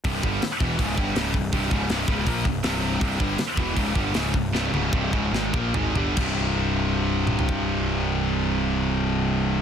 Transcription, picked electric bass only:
X:1
M:4/4
L:1/8
Q:1/4=154
K:none
V:1 name="Picked electric bass" clef=bass
C,,, G,,, z E,,, _D,,, G,,, D,,, C,,, | C,,, _D,,, C,,, D,,, _B,,, C,,, C,,,2 | C,,, G,,, z E,,, _D,,, G,,, D,,, C,,, | C,,, _D,,, C,,, D,,, _A,,, _B,,, A,,, G,,, |
C,,,8- | C,,,8 |]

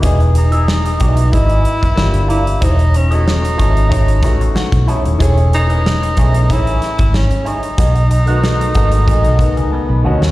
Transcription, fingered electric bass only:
X:1
M:4/4
L:1/16
Q:"Swing 16ths" 1/4=93
K:E
V:1 name="Fingered electric bass" clef=bass
E,,,6 B,,,2 G,,,2 z F,,, =G,,,4 | E,,,6 G,,,4 A,,,2 z B,,, z D,,, | E,,,6 B,,,2 A,,,2 z G,,,2 z3 | B,,,6 G,,,2 A,,, B,,, z C,, z B,,, =D,, ^D,, |]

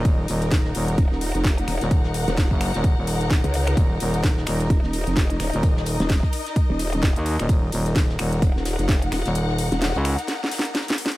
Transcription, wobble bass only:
X:1
M:4/4
L:1/16
Q:"Swing 16ths" 1/4=129
K:Ebm
V:1 name="Wobble bass" clef=bass
z8 E,,, E,,,2 F,,,3 E,,, z | z3 E,,,2 z8 D,,3 | z8 E,,, E,,,2 F,,,3 E,,, z | z3 E,,,2 z4 E,,,4 z3 |
z8 E,,, E,,,2 F,,,3 E,,, z | z3 E,,,2 z8 z3 |]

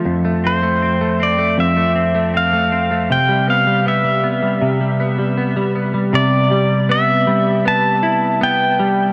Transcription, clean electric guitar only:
X:1
M:4/4
L:1/16
Q:1/4=79
K:C
V:1 name="Clean electric guitar"
F,, A, C A, C A, C A, F,, A, C A, C A, C A, | C, G, B, G, B, G, B, G, C, G, B, G, B, G, B, G, | C,2 G,2 B,2 G,2 B,2 E2 B,2 G,2 |]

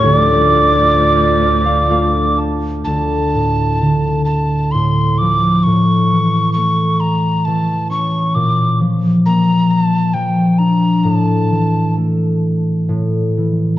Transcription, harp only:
X:1
M:3/4
L:1/16
Q:1/4=66
K:Dm
V:1 name="Harp"
z6 d f f2 a2 | z12 | z12 | z12 |
z12 |]
V:2 name="Harp" clef=bass
D,,8 [A,DF]4 | D,,2 A,,2 D,4 A,,2 F,2 | A,,2 E,2 A,4 E,2 ^C2 | B,,2 F,2 B,4 F,2 D2 |
A,,2 E,2 A,4 A,,2 E,2 |]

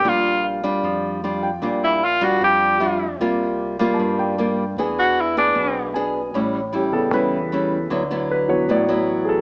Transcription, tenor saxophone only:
X:1
M:4/4
L:1/8
Q:1/4=153
K:Bblyd
V:1 name="Tenor saxophone"
F2 z6 | z E F _G =G4 | z8 | z _G E D3 z2 |
[K:Amix] z8 | z8 |]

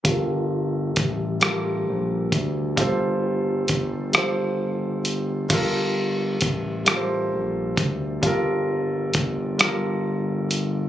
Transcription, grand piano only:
X:1
M:6/8
L:1/8
Q:3/8=44
K:Gm
V:1 name="Grand piano"
[G,FAB]2 z [G,FAB]2 z | [G,FAc]2 z [G,FAc]2 z | [G,FAB]2 z [G,FABc]2 z | [G,FAB]2 z [G,FAB]2 z |]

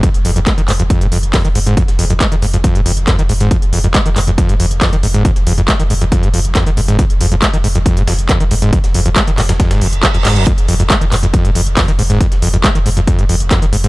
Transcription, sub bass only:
X:1
M:4/4
L:1/16
Q:1/4=138
K:Fm
V:1 name="Sub bass" clef=bass
z F,,, F,,, F,,, z F,,, F,,, F,,, z F,,, F,,, F,,, z F,,, F,,, F,,, | z F,,, F,,, F,,, z F,,, F,,, F,,, z F,,, F,,, F,,, z F,,, F,,, F,,, | z F,,, F,,, F,,, z F,,, F,,, F,,, z F,,, F,,, F,,, z F,,, F,,, F,,, | z F,,, F,,, F,,, z F,,, F,,, F,,, z F,,, F,,, F,,, z F,,, F,,, F,,, |
z F,,, F,,, F,,, z F,,, F,,, F,,, z F,,, F,,, F,,, z F,,, F,,, F,,, | z F,,, F,,, F,,, z F,,, F,,, F,,, z F,,, F,,, F,,, z F,,, F,,, F,,, | z F,,, F,,, F,,, z F,,, F,,, F,,, z F,,, F,,, F,,, z F,,, F,,, F,,, | z F,,, F,,, F,,, z F,,, F,,, F,,, z F,,, F,,, F,,, z F,,, F,,, F,,, |]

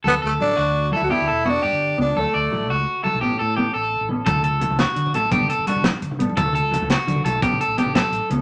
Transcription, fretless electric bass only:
X:1
M:12/8
L:1/16
Q:3/8=114
K:D
V:1 name="Fretless electric bass" clef=bass
D,,2 D,,2 A,,,2 D,,4- D,, D,, G,,, D,, E,,,4 G,, G,,,3 C,,2 | D,, z D,,2 A,,,2 C,,2 z3 B,,, A,,, A,, A,,4 A,,,3 A,,,3 | D,,3 C,,2 C,,2 z D,2 A,,,2 G,,,2 z G,,, z G,,,2 z G,,, z A,,, z | D,,3 C,,2 C,,2 z D,2 B,,,2 A,,,2 z A,,, z A,,,2 z A,,, z C,, z |]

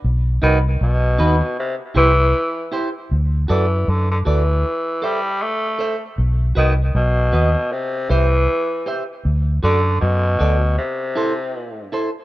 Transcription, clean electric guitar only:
X:1
M:4/4
L:1/8
Q:"Swing 16ths" 1/4=78
K:Bphr
V:1 name="Clean electric guitar"
z [^DFB] z [DFB] z [EGc] z [EGc] | z [FAd] z [FAd] z [Ace] z [Ace] | z [FB^d] z [FBd] z [Gce] z [Gce] | z [FAd] z [FAd] z [EAc] z [EAc] |]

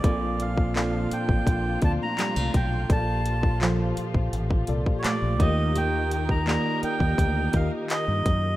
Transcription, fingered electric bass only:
X:1
M:4/4
L:1/16
Q:1/4=84
K:Bb
V:1 name="Fingered electric bass" clef=bass
B,,,6 z A,,, B,,,2 D,, z2 C,, _C,,2 | B,,,6 z B,,, A,,,2 C,, z2 B,,, E,,2- | E,,6 z E,, D,,2 E,, z2 G,, _G,,2 |]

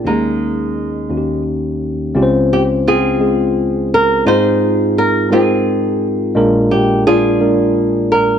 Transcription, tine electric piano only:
X:1
M:6/8
L:1/8
Q:3/8=57
K:Dblyd
V:1 name="Tine electric piano"
[B,DEGA]2 z [B,DE_G=G]2 z | [A,CDFGc]2 z [A,CFA]2 z | [A,CEFA]2 z [A,CEFB]2 z | [A,B,=DFB]2 z [A,B,DFB]2 z |]
V:2 name="Tine electric piano" clef=bass
[E,,E,]3 [E,,E,]3 | [D,,D,]6 | A,,6 | [B,,,B,,]6 |]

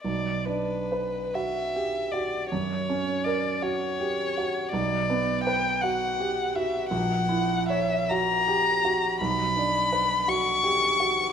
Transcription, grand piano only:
X:1
M:6/8
L:1/8
Q:3/8=54
K:Bm
V:1 name="Grand piano"
B,,, D B F G F | F,, C ^A F G F | B,,, B, B F G F | ^A,,, E c F G F |
B,,, D B F G F |]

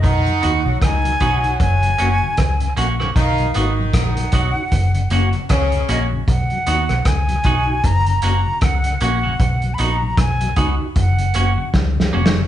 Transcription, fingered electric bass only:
X:1
M:4/4
L:1/16
Q:"Swing 16ths" 1/4=77
K:Blyd
V:1 name="Fingered electric bass" clef=bass
B,,, z D,, B,,, C,,2 B,,,2 F,,,2 F,,, z C,,2 A,,,2 | B,,,2 G,,,2 A,,,2 B,,, z F,,,2 F,,, z C,,2 A,,,2 | B,,, z D,, B,,, C,,2 B,,,2 F,,,2 F,,, z C,,2 A,,,2 | B,,,2 A,,,2 B,,,2 C,, z F,,,2 F,,, z C,,2 E,,,2 |]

